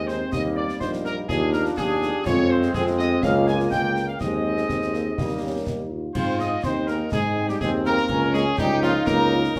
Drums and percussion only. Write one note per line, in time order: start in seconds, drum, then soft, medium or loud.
0.09 snare medium
0.33 concert bass drum medium
0.33 snare medium
0.69 snare medium
0.81 concert bass drum medium
0.81 snare medium
0.93 snare medium
1.05 snare medium
1.29 concert bass drum medium
1.29 snare medium
1.53 snare medium
1.65 snare medium
1.78 concert bass drum medium
1.78 snare medium
2.02 snare medium
2.26 concert bass drum loud
2.26 snare medium
2.26 crash soft
2.62 snare medium
2.74 concert bass drum medium
2.74 snare medium
2.87 snare medium
2.99 snare medium
3.23 concert bass drum medium
3.23 snare medium
3.48 snare medium
3.60 snare medium
3.72 concert bass drum medium
3.72 snare medium
3.96 snare medium
4.21 concert bass drum medium
4.21 snare medium
4.57 snare soft
4.69 concert bass drum medium
4.69 snare medium
4.82 snare medium
4.94 snare medium
5.18 concert bass drum medium
5.18 snare medium
5.67 concert bass drum medium
5.67 snare medium
6.15 concert bass drum medium
6.15 crash medium
6.40 snare medium
6.64 concert bass drum medium
6.64 snare medium
6.88 snare medium
7.12 concert bass drum medium
7.12 snare medium
7.49 snare medium
7.61 concert bass drum medium
7.61 snare medium
7.85 snare medium
7.97 snare medium
8.09 concert bass drum medium
8.09 crash soft
8.34 snare medium
8.58 concert bass drum medium
8.58 snare medium
8.83 snare medium
9.07 concert bass drum medium
9.07 snare medium
9.44 snare medium
9.56 concert bass drum medium
9.56 snare medium